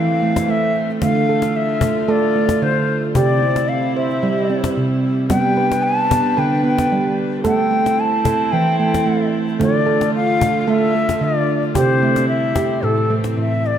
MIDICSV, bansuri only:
0, 0, Header, 1, 2, 480
1, 0, Start_track
1, 0, Key_signature, 0, "minor"
1, 0, Tempo, 536673
1, 910, Time_signature, 4, 2, 24, 8
1, 12328, End_track
2, 0, Start_track
2, 0, Title_t, "Bansuri"
2, 0, Program_c, 0, 73
2, 0, Note_on_c, 0, 77, 95
2, 447, Note_on_c, 0, 76, 95
2, 460, Note_off_c, 0, 77, 0
2, 802, Note_off_c, 0, 76, 0
2, 915, Note_on_c, 0, 77, 96
2, 1396, Note_on_c, 0, 76, 93
2, 1409, Note_off_c, 0, 77, 0
2, 1879, Note_on_c, 0, 74, 86
2, 1893, Note_off_c, 0, 76, 0
2, 2347, Note_on_c, 0, 72, 78
2, 2360, Note_off_c, 0, 74, 0
2, 2708, Note_off_c, 0, 72, 0
2, 2823, Note_on_c, 0, 74, 88
2, 3296, Note_on_c, 0, 77, 84
2, 3309, Note_off_c, 0, 74, 0
2, 3537, Note_off_c, 0, 77, 0
2, 3548, Note_on_c, 0, 76, 80
2, 4226, Note_off_c, 0, 76, 0
2, 4742, Note_on_c, 0, 79, 93
2, 5212, Note_on_c, 0, 81, 100
2, 5226, Note_off_c, 0, 79, 0
2, 5711, Note_on_c, 0, 79, 89
2, 5724, Note_off_c, 0, 81, 0
2, 5945, Note_off_c, 0, 79, 0
2, 5958, Note_on_c, 0, 79, 83
2, 6396, Note_off_c, 0, 79, 0
2, 6680, Note_on_c, 0, 79, 94
2, 7155, Note_on_c, 0, 81, 100
2, 7169, Note_off_c, 0, 79, 0
2, 7620, Note_on_c, 0, 79, 90
2, 7634, Note_off_c, 0, 81, 0
2, 7861, Note_off_c, 0, 79, 0
2, 7866, Note_on_c, 0, 79, 80
2, 8311, Note_off_c, 0, 79, 0
2, 8604, Note_on_c, 0, 74, 98
2, 9042, Note_off_c, 0, 74, 0
2, 9084, Note_on_c, 0, 77, 109
2, 9489, Note_off_c, 0, 77, 0
2, 9489, Note_on_c, 0, 77, 74
2, 9564, Note_on_c, 0, 76, 103
2, 9577, Note_off_c, 0, 77, 0
2, 10048, Note_on_c, 0, 74, 94
2, 10062, Note_off_c, 0, 76, 0
2, 10405, Note_off_c, 0, 74, 0
2, 10518, Note_on_c, 0, 72, 93
2, 10962, Note_off_c, 0, 72, 0
2, 10985, Note_on_c, 0, 76, 97
2, 11470, Note_on_c, 0, 69, 74
2, 11483, Note_off_c, 0, 76, 0
2, 11751, Note_off_c, 0, 69, 0
2, 11981, Note_on_c, 0, 76, 83
2, 12219, Note_on_c, 0, 74, 92
2, 12232, Note_off_c, 0, 76, 0
2, 12328, Note_off_c, 0, 74, 0
2, 12328, End_track
0, 0, End_of_file